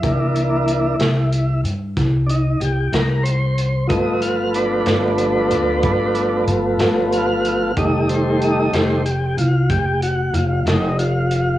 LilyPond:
<<
  \new Staff \with { instrumentName = "Tonewheel organ" } { \time 12/8 \key g \dorian \tempo 4. = 62 e'2~ e'8 r4 <d' ees'>8 g'8 bes'8 c''4 | ees''8 f''8 <d' b'>2. r4 f''4 | ees''8 c''8 ees''8 c''8 g'8 f'8 g'8 fis'8 f'8 ees'8 f'4 | }
  \new Staff \with { instrumentName = "Tonewheel organ" } { \clef bass \time 12/8 \key g \dorian <e bes d'>4. r1 r8 | <f a b>1. | <ees g a>4. <ees g a>8 r1 | }
  \new Staff \with { instrumentName = "Upright bass" } { \clef bass \time 12/8 \key g \dorian c,4. c,4 g,8 c,4 c,8 c,4. | g,,4. g,,4 d,8 g,,4 g,,8 g,,4. | f,,4. f,,4 c,8 f,,4 f,,8 f,,4. | }
  \new DrumStaff \with { instrumentName = "Drums" } \drummode { \time 12/8 <hh bd>8 hh8 hh8 <hh sn>8 hh8 hh8 <hh bd sn>8 hh8 hh8 <hh sn>8 hh8 hh8 | <hh bd>8 hh8 hh8 <hh sn>8 hh8 hh8 <hh bd>8 hh8 hh8 <hh sn>8 hh8 hh8 | <hh bd>8 hh8 hh8 <hh sn>8 hh8 hh8 <hh bd>8 hh8 hh8 <hh sn>8 hh8 hh8 | }
>>